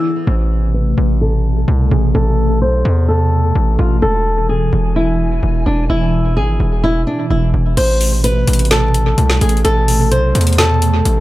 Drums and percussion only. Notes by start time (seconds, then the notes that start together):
7.77 closed hi-hat, crash
8.01 open hi-hat
8.24 closed hi-hat
8.47 closed hi-hat
8.53 closed hi-hat
8.59 closed hi-hat
8.65 closed hi-hat
8.71 snare, closed hi-hat
8.94 closed hi-hat
9.18 closed hi-hat
9.30 snare
9.41 closed hi-hat
9.49 closed hi-hat
9.57 closed hi-hat
9.65 closed hi-hat
9.88 open hi-hat
10.12 closed hi-hat
10.35 closed hi-hat
10.41 closed hi-hat
10.47 closed hi-hat
10.53 closed hi-hat
10.58 snare, closed hi-hat
10.82 closed hi-hat
11.05 closed hi-hat